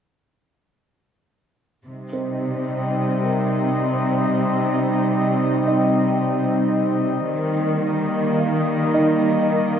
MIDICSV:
0, 0, Header, 1, 4, 480
1, 0, Start_track
1, 0, Key_signature, -3, "minor"
1, 0, Tempo, 545455
1, 1632, Time_signature, 5, 2, 24, 8
1, 8620, End_track
2, 0, Start_track
2, 0, Title_t, "Grand piano"
2, 0, Program_c, 0, 0
2, 1809, Control_c, 0, 64, 127
2, 1871, Note_on_c, 0, 60, 17
2, 1876, Note_on_c, 0, 72, 19
2, 2834, Note_on_c, 0, 70, 19
2, 3276, Note_off_c, 0, 60, 0
2, 3279, Note_off_c, 0, 72, 0
2, 4238, Note_off_c, 0, 70, 0
2, 4993, Note_on_c, 0, 75, 31
2, 4997, Note_on_c, 0, 63, 22
2, 6397, Note_off_c, 0, 75, 0
2, 6399, Note_off_c, 0, 63, 0
2, 6448, Control_c, 0, 64, 0
2, 6600, Control_c, 0, 64, 127
2, 7382, Note_on_c, 0, 77, 32
2, 7865, Note_on_c, 0, 63, 26
2, 7870, Note_on_c, 0, 75, 35
2, 8620, Note_off_c, 0, 63, 0
2, 8620, Note_off_c, 0, 75, 0
2, 8620, Note_off_c, 0, 77, 0
2, 8620, End_track
3, 0, Start_track
3, 0, Title_t, "Ambient pad"
3, 0, Program_c, 1, 92
3, 1629, Note_on_c, 1, 63, 47
3, 1631, Note_on_c, 1, 75, 45
3, 1632, Note_on_c, 1, 55, 46
3, 1634, Note_on_c, 1, 60, 48
3, 6395, Note_off_c, 1, 63, 0
3, 6396, Note_off_c, 1, 75, 0
3, 6397, Note_off_c, 1, 55, 0
3, 6398, Note_off_c, 1, 60, 0
3, 6437, Note_on_c, 1, 55, 48
3, 6438, Note_on_c, 1, 58, 52
3, 6439, Note_on_c, 1, 75, 47
3, 6441, Note_on_c, 1, 63, 51
3, 8620, Note_off_c, 1, 55, 0
3, 8620, Note_off_c, 1, 58, 0
3, 8620, Note_off_c, 1, 63, 0
3, 8620, Note_off_c, 1, 75, 0
3, 8620, End_track
4, 0, Start_track
4, 0, Title_t, "Cello section"
4, 0, Program_c, 2, 48
4, 1634, Note_on_c, 2, 48, 29
4, 6397, Note_off_c, 2, 48, 0
4, 6431, Note_on_c, 2, 51, 36
4, 8620, Note_off_c, 2, 51, 0
4, 8620, End_track
0, 0, End_of_file